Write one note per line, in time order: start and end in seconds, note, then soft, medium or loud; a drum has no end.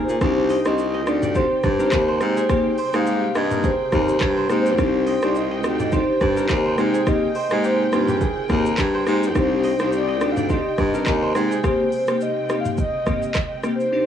0.00 0.17 C3 medium
0.00 0.19 G3 medium
0.00 0.14 A#3 medium
0.00 0.14 C4 medium
0.00 0.17 C4 medium
0.00 0.14 D#4 medium
0.00 0.46 F4 medium
0.00 0.15 G4 medium
0.00 0.19 G4 medium
0.00 1.29 G#4 medium
0.00 1.07 A#4 medium
0.00 0.68 C5 loud
0.08 0.19 A#2 medium
0.08 shaker medium
0.21 0.59 C2 loud
0.21 9.31 C3 medium
0.21 0.62 C4 loud
0.21 4.74 C4 medium
0.21 0.62 D4 medium
0.21 0.62 D#4 medium
0.21 0.62 G4 loud
0.21 13.89 G5 medium
0.21 kick loud
0.21 cross-stick loud
0.21 shaker medium
0.49 0.94 D#5 medium
0.49 open hi-hat medium
0.49 shaker medium
0.65 1.08 C2 loud
0.65 0.85 C4 medium
0.65 0.86 D4 medium
0.65 0.86 D#4 medium
0.65 0.86 G4 medium
0.65 1.35 C5 medium
0.65 1.10 D#5 loud
0.65 cross-stick loud
0.65 shaker medium
0.78 shaker medium
0.94 1.29 D#5 medium
1.06 1.44 D2 loud
1.06 1.28 C4 medium
1.06 1.28 D4 medium
1.06 1.29 D#4 medium
1.06 1.29 G4 medium
1.06 1.38 D5 loud
1.06 cross-stick loud
1.06 shaker medium
1.22 1.64 D5 medium
1.22 mid tom medium
1.22 shaker medium
1.35 1.57 C4 loud
1.35 1.57 D4 medium
1.35 1.57 D#4 medium
1.35 1.57 G4 loud
1.35 2.08 C5 medium
1.35 2.22 C5 loud
1.35 kick medium
1.35 shaker medium
1.63 1.88 G2 loud
1.63 2.75 D5 medium
1.63 kick medium
1.63 cross-stick medium
1.63 mid tom loud
1.63 shaker soft
1.79 2.00 C4 medium
1.79 2.00 D4 medium
1.79 2.00 D#4 medium
1.79 2.00 G4 medium
1.79 3.07 A#4 medium
1.79 shaker medium
1.92 2.17 D#2 loud
1.92 kick loud
1.92 cross-stick loud
1.92 clap loud
1.92 shaker medium
2.08 2.78 C5 medium
2.21 2.45 G#2 loud
2.21 4.76 G3 medium
2.21 2.43 A#3 medium
2.21 2.43 C4 medium
2.21 2.43 D#4 medium
2.21 2.43 G4 medium
2.21 cross-stick medium
2.21 shaker medium
2.32 2.90 C5 loud
2.37 2.94 G#4 medium
2.37 shaker medium
2.49 2.71 A#3 loud
2.49 2.71 C4 medium
2.49 2.72 D#4 medium
2.49 2.72 G4 loud
2.49 kick loud
2.49 cross-stick loud
2.49 shaker medium
2.78 3.97 C5 medium
2.78 open hi-hat medium
2.78 shaker medium
2.93 3.29 G#2 loud
2.93 3.32 A#3 medium
2.93 3.32 C4 medium
2.93 3.32 D#4 medium
2.93 3.32 G4 medium
2.93 3.13 G#4 medium
2.93 3.38 F5 loud
2.93 cross-stick loud
2.93 shaker medium
3.07 3.35 G4 medium
3.07 shaker medium
3.35 3.73 G2 loud
3.35 3.62 A#3 medium
3.35 3.62 C4 medium
3.35 3.62 D#4 medium
3.35 3.70 G4 medium
3.35 3.62 G4 medium
3.35 3.65 D#5 loud
3.35 cross-stick loud
3.35 shaker medium
3.51 3.92 A#4 medium
3.51 mid tom medium
3.51 shaker medium
3.64 5.00 G#4 medium
3.64 4.46 C5 loud
3.64 kick medium
3.64 shaker medium
3.92 4.17 D#2 loud
3.92 4.14 A#3 medium
3.92 4.14 C4 medium
3.92 4.15 D#4 medium
3.92 4.15 G4 medium
3.92 5.20 A#4 medium
3.92 kick medium
3.92 cross-stick medium
3.92 mid tom loud
3.92 shaker soft
4.09 shaker medium
4.20 4.45 G2 loud
4.20 kick loud
4.20 cross-stick medium
4.20 clap loud
4.20 shaker medium
4.37 4.49 C5 medium
4.49 4.80 G#2 loud
4.49 4.71 A#3 medium
4.49 4.72 C4 medium
4.49 4.72 D#4 medium
4.49 4.72 G4 medium
4.49 5.22 C5 medium
4.49 cross-stick medium
4.49 shaker medium
4.60 5.25 C5 loud
4.66 shaker medium
4.78 5.16 C2 loud
4.78 6.76 C4 medium
4.78 5.19 C4 loud
4.78 5.19 D4 medium
4.78 5.19 D#4 medium
4.78 5.19 G4 loud
4.78 kick loud
4.78 cross-stick loud
4.78 shaker medium
5.07 5.51 D#5 medium
5.07 open hi-hat medium
5.07 shaker medium
5.22 5.66 C2 loud
5.22 5.43 C4 medium
5.22 5.43 D4 medium
5.22 5.43 D#4 medium
5.22 5.43 G4 medium
5.22 5.92 C5 medium
5.22 5.38 D5 loud
5.22 cross-stick loud
5.22 shaker medium
5.35 5.80 D#5 loud
5.35 shaker medium
5.51 5.86 D#5 medium
5.64 6.02 D2 loud
5.64 5.86 C4 medium
5.64 5.86 D4 medium
5.64 5.86 D#4 medium
5.64 5.86 G4 medium
5.64 cross-stick loud
5.64 shaker medium
5.80 6.21 D5 medium
5.80 5.92 D#5 medium
5.80 mid tom medium
5.80 shaker medium
5.92 6.14 C4 loud
5.92 6.14 D4 medium
5.92 6.14 D#4 medium
5.92 6.14 G4 loud
5.92 6.65 C5 medium
5.92 6.75 C5 loud
5.92 kick medium
5.92 shaker medium
6.21 6.45 G2 loud
6.21 7.32 D5 medium
6.21 kick medium
6.21 cross-stick medium
6.21 mid tom loud
6.21 shaker soft
6.36 6.57 C4 medium
6.36 6.57 D4 medium
6.36 6.57 D#4 medium
6.36 6.57 G4 medium
6.36 7.64 A#4 medium
6.36 shaker medium
6.49 6.74 D#2 loud
6.49 kick loud
6.49 cross-stick medium
6.49 clap loud
6.49 shaker medium
6.66 7.35 C5 medium
6.78 7.02 G#2 loud
6.78 9.33 D#3 medium
6.78 7.00 A#3 medium
6.78 7.00 C4 medium
6.78 9.33 C4 medium
6.78 7.00 D#4 medium
6.78 7.00 G4 medium
6.78 cross-stick medium
6.78 shaker medium
6.89 7.10 C5 medium
6.94 7.51 G#4 medium
6.94 shaker medium
7.06 7.28 A#3 loud
7.06 7.28 C4 medium
7.06 7.29 D#4 medium
7.06 7.29 G4 loud
7.06 7.36 D#5 loud
7.06 kick loud
7.06 cross-stick loud
7.06 shaker medium
7.35 8.54 C5 medium
7.35 7.63 D#5 loud
7.35 open hi-hat medium
7.35 shaker medium
7.50 7.86 G#2 loud
7.50 7.89 A#3 medium
7.50 7.89 C4 medium
7.50 7.90 D#4 medium
7.50 7.90 G4 medium
7.50 7.70 G#4 medium
7.50 cross-stick loud
7.50 shaker medium
7.64 8.08 G4 medium
7.64 8.06 C5 medium
7.64 shaker medium
7.92 8.30 G2 medium
7.92 8.19 A#3 medium
7.92 8.19 C4 medium
7.92 8.19 D#4 medium
7.92 9.44 F4 medium
7.92 8.19 G4 medium
7.92 cross-stick loud
7.92 shaker medium
8.08 8.27 G4 medium
8.08 9.04 G#4 medium
8.08 mid tom medium
8.08 shaker medium
8.21 9.58 G#4 medium
8.21 kick medium
8.21 shaker medium
8.49 8.74 D#2 loud
8.49 8.71 A#3 medium
8.49 8.71 C4 medium
8.49 8.71 D#4 medium
8.49 8.72 G4 medium
8.49 9.77 A#4 medium
8.49 kick medium
8.49 cross-stick medium
8.49 mid tom loud
8.49 shaker soft
8.66 shaker medium
8.77 9.02 G2 loud
8.77 kick loud
8.77 cross-stick medium
8.77 clap loud
8.77 shaker medium
8.94 9.07 C5 medium
9.06 9.37 G#2 loud
9.06 9.28 A#3 medium
9.06 9.28 C4 medium
9.06 9.29 D#4 medium
9.06 9.29 G4 medium
9.06 9.79 C5 medium
9.06 cross-stick medium
9.06 shaker medium
9.23 shaker medium
9.35 9.73 C2 loud
9.35 14.06 C3 medium
9.35 9.76 C4 loud
9.35 14.06 C4 medium
9.35 9.76 D4 medium
9.35 9.76 D#4 medium
9.35 9.76 G4 loud
9.35 9.89 C5 medium
9.35 kick loud
9.35 cross-stick loud
9.35 shaker medium
9.64 10.08 D#5 medium
9.64 open hi-hat medium
9.64 shaker medium
9.79 10.23 C2 loud
9.79 10.00 C4 medium
9.79 10.00 D4 medium
9.79 10.00 D#4 medium
9.79 10.00 G4 medium
9.79 10.49 C5 medium
9.79 cross-stick loud
9.79 shaker medium
9.92 10.33 D5 loud
9.92 shaker medium
10.08 10.43 D#5 medium
10.21 10.59 D2 loud
10.21 10.43 C4 medium
10.21 10.43 D4 medium
10.21 10.43 D#4 medium
10.21 10.43 G4 medium
10.21 cross-stick loud
10.21 shaker medium
10.32 10.45 F5 loud
10.37 10.78 D5 medium
10.37 mid tom medium
10.37 shaker medium
10.45 10.53 F5 medium
10.49 10.71 C4 loud
10.49 10.71 D4 medium
10.49 10.71 D#4 medium
10.49 10.72 G4 loud
10.49 11.22 C5 medium
10.49 11.36 D#5 loud
10.49 kick medium
10.49 shaker medium
10.78 11.03 G2 loud
10.78 11.89 D5 medium
10.78 kick medium
10.78 cross-stick medium
10.78 mid tom loud
10.78 shaker soft
10.94 11.14 C4 medium
10.94 11.14 D4 medium
10.94 11.14 D#4 medium
10.94 11.14 G4 medium
10.94 12.21 A#4 medium
10.94 shaker medium
11.06 11.31 D#2 loud
11.06 kick loud
11.06 cross-stick medium
11.06 clap loud
11.06 shaker medium
11.22 12.41 C5 medium
11.35 11.59 G#2 loud
11.35 13.90 G#3 medium
11.35 11.57 A#3 medium
11.35 11.57 C4 medium
11.35 11.57 D#4 medium
11.35 11.57 G4 medium
11.35 cross-stick medium
11.35 shaker medium
11.51 12.88 G#4 medium
11.51 shaker medium
11.63 11.85 A#3 loud
11.63 11.86 C4 medium
11.63 11.86 D#4 medium
11.63 11.86 G4 loud
11.63 11.91 C5 loud
11.63 kick loud
11.63 cross-stick loud
11.63 shaker medium
11.92 12.24 C5 loud
11.92 open hi-hat medium
11.92 shaker medium
12.07 12.46 A#3 medium
12.07 12.46 C4 medium
12.07 12.46 D#4 medium
12.07 12.47 G4 medium
12.07 cross-stick loud
12.07 shaker medium
12.21 12.60 D#5 loud
12.21 shaker medium
12.49 12.76 A#3 medium
12.49 12.76 C4 medium
12.49 12.76 D#4 medium
12.49 12.76 G4 medium
12.49 cross-stick loud
12.49 shaker medium
12.61 12.69 F5 loud
12.65 mid tom medium
12.65 shaker medium
12.78 13.61 D#5 loud
12.78 kick medium
12.78 shaker medium
13.06 13.28 A#3 medium
13.06 13.29 C4 medium
13.06 13.29 D#4 medium
13.06 13.29 G4 medium
13.06 kick medium
13.06 cross-stick medium
13.06 mid tom loud
13.06 shaker soft
13.23 shaker medium
13.35 kick loud
13.35 cross-stick medium
13.35 clap loud
13.35 shaker medium
13.63 13.86 A#3 medium
13.63 13.86 C4 medium
13.63 13.86 D#4 medium
13.63 13.86 G4 medium
13.63 cross-stick medium
13.63 shaker medium
13.75 14.06 C5 loud
13.80 shaker medium
13.92 14.06 C4 loud
13.92 14.06 D4 medium
13.92 14.06 D#4 medium
13.92 14.06 G4 medium
13.92 14.06 G4 loud